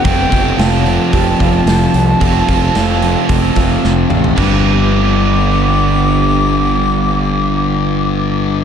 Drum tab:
CC |----------------|----------------|x---------------|----------------|
HH |o-o-o-o-o-o-o-o-|o-o-o-o-o-o-----|----------------|----------------|
SD |----o-------o---|----o-------o---|----------------|----------------|
T2 |----------------|--------------o-|----------------|----------------|
FT |----------------|---------------o|----------------|----------------|
BD |o-o-----o-o-----|o-o-----o-o-----|o---------------|----------------|